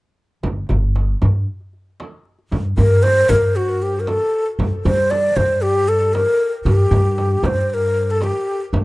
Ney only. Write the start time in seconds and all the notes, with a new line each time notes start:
2.78 A#4
3.03 C5
3.29 A#4
3.56 F#4
3.82 G4
4.00 A#4
4.08 A4
4.85 C5
5.11 D5
5.36 C5
5.62 G4
5.88 A4
6.14 A#4
6.64 G4
7.45 C5
7.61 C5
7.70 A#4 C5
8.11 A4
8.23 G4